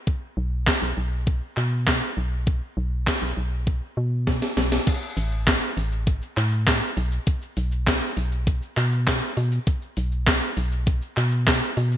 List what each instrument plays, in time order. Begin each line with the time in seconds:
0.07 kick
0.37 fm bass B1
0.67 kick, snare, clap
0.82 fm bass B1
0.97 fm bass B1
1.27 kick
1.57 fm bass B2, clap
1.87 kick, snare, clap
2.17 fm bass B1
2.47 kick
2.77 fm bass B1
3.07 kick, snare, clap
3.22 fm bass B1
3.37 fm bass B1
3.67 kick
3.97 fm bass B2
4.27 kick, snare
4.42 snare
4.57 fm bass B1, snare
4.72 snare
4.87 kick, closed hi-hat, crash, shaker
5.02 shaker
5.17 fm bass A1, open hi-hat, shaker
5.32 shaker
5.47 kick, snare, clap, closed hi-hat, shaker
5.62 shaker
5.77 fm bass A1, open hi-hat, shaker
5.92 shaker
6.07 kick, closed hi-hat, shaker
6.22 shaker
6.37 fm bass A2, clap, open hi-hat, shaker
6.52 shaker
6.67 kick, snare, clap, closed hi-hat, shaker
6.82 shaker
6.97 fm bass B1, open hi-hat, shaker
7.12 shaker
7.27 kick, closed hi-hat, shaker
7.42 shaker
7.57 fm bass B1, open hi-hat, shaker
7.72 shaker
7.87 kick, snare, clap, closed hi-hat, shaker
8.02 shaker
8.17 fm bass B1, open hi-hat, shaker
8.32 shaker
8.47 kick, closed hi-hat, shaker
8.62 shaker
8.77 fm bass B2, clap, open hi-hat, shaker
8.92 shaker
9.07 kick, snare, clap, closed hi-hat, shaker
9.22 shaker
9.37 fm bass B2, open hi-hat, shaker
9.52 shaker
9.67 kick, closed hi-hat, shaker
9.82 shaker
9.97 fm bass B1, open hi-hat, shaker
10.12 shaker
10.27 kick, snare, clap, closed hi-hat, shaker
10.42 shaker
10.57 fm bass B1, open hi-hat, shaker
10.72 shaker
10.87 kick, closed hi-hat, shaker
11.02 shaker
11.17 fm bass B2, clap, open hi-hat, shaker
11.32 shaker
11.47 kick, snare, clap, closed hi-hat, shaker
11.62 shaker
11.77 fm bass B2, open hi-hat, shaker
11.92 shaker